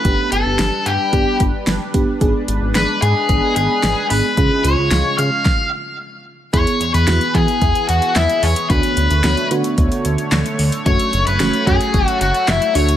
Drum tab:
HH |x-x-x-x-x-x-x-x-|x-x-x-x-x-x-x-o-|x-x-x-x---------|xxxxxxxxxxxxxxox|
CP |----------------|----------------|----------------|------------x---|
SD |----o-------o---|----o-------o---|----o---o-------|----o-------o---|
BD |o-------o-o---o-|o-------o-------|o-------o-------|o-----o-o-------|

HH |xxxxxxxxxxxxxxox|xxxxxxxxxxxxxxox|
CP |------------x---|------------x---|
SD |----o-------o---|----o-------o---|
BD |o-------o-------|o-----o-o-------|